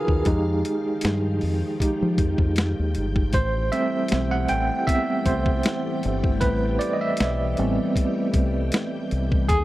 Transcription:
Already playing: C#3 D#3 D#4 F4 F#4 G#4 A#4 B4 F5
0.08 D#2, kick
0.25 F2 D#3 F3 G#3 D#4 G4 G5, kick, closed hi-hat
0.65 closed hi-hat
1.01 G2, snare, closed hi-hat
1.41 F2, open hi-hat
1.80 G#3 D#4 G4, kick, closed hi-hat
2.02 F3
2.18 F2, kick, closed hi-hat
2.38 F2, kick
2.56 snare, closed hi-hat
2.79 D#2
2.95 G1, closed hi-hat
3.16 kick
3.33 A1 E3 G3 A3 C5, kick, closed hi-hat
3.72 G3 A3 C4 E5, closed hi-hat
4.08 B1, snare, closed hi-hat
4.31 F#5
4.48 A1 G5, closed hi-hat
4.87 G3 B3 C4 E5, kick, closed hi-hat
5.26 C2 C5, kick, closed hi-hat
5.46 kick
5.63 snare, closed hi-hat
6.03 G1, closed hi-hat
6.24 kick
6.41 A1 B4, kick, closed hi-hat
6.79 D5, closed hi-hat
6.93 D#5
7.01 E5
7.17 B1, snare, closed hi-hat
7.57 A1 G3 B3 C4, closed hi-hat
7.96 kick, closed hi-hat
8.34 C2, kick, closed hi-hat
8.72 snare, closed hi-hat
9.11 C2, closed hi-hat
9.32 kick
9.48 D#2 C#3 D#3 D#4 G#4 F5, kick, closed hi-hat

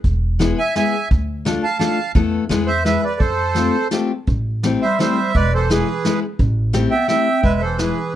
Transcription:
0.04 E1, kick, closed hi-hat
0.39 G#3 B3 E4 G#4, snare, closed hi-hat
0.58 E5 G#5
0.75 G#3 B3 E4 G#4 E5 G#5, snare, closed hi-hat
1.11 D2, kick, closed hi-hat
1.45 A3 D4 F4 A4, snare, closed hi-hat
1.64 F5 A5
1.79 A3 D4 F4 A4 F5 A5, snare, closed hi-hat
2.15 E2 A3 B3 E4 A4, kick, closed hi-hat
2.49 E2 G#3 B3 E4 G#4, snare, closed hi-hat
2.66 C5 E5
2.84 G#3 B3 E4 G#4 B4 E5, snare, closed hi-hat
3.03 B4 D5
3.19 F2 A4 C5, kick, closed hi-hat
3.55 A3 C4 F4 G4, snare, closed hi-hat
3.91 A3 C4 F4 G4, snare, closed hi-hat
4.27 A1, kick, closed hi-hat
4.63 A3 C4 E4 G4, snare, closed hi-hat
4.81 G3 C5 E5
4.99 G3 A3 C4 E4 G4 C5 E5, snare, closed hi-hat
5.35 E1 G#3 B4 D5, kick, closed hi-hat
5.54 E3 A4 C5
5.70 E3 G#3 B3 E4 G#4 B4, snare, closed hi-hat
6.05 G#3 B3 E4 G#4, snare, closed hi-hat
6.39 A1, kick, closed hi-hat
6.73 A3 C4 E4 G4, snare, closed hi-hat
6.91 B3 E5 G5
7.07 A3 C4 E4 G4 E5 G5, snare, closed hi-hat
7.43 E1 G#3 B4 E5, kick, closed hi-hat
7.60 E3 A4 C5
7.78 E3 G#3 B3 E4 G#4 B4, snare, closed hi-hat

